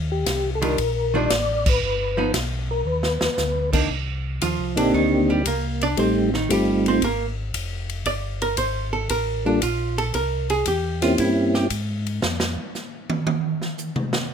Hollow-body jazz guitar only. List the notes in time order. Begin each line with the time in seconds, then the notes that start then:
0.62 D#3 G3 D4 F4
1.14 D#3 G3 D4 F4
2.17 F3 B3 D#4
3.73 D#3 A#3 D4
4.42 F3 F4
4.77 D3 D4
4.94 D#3 D#4
5.30 G3 G4
5.47 A#3 A#4
5.83 D4 D5
5.99 C4 C5
6.35 D#3 D#4
6.51 G3 G4
6.88 C4 C5
7.04 A#3 A#4
8.07 D5
8.42 A#4
8.58 C5
8.93 A4
9.10 A#4
9.46 D4
9.63 F4
9.98 A4
10.15 A#4
10.50 G#4
10.68 G4
11.02 F4
11.20 E4
11.55 G4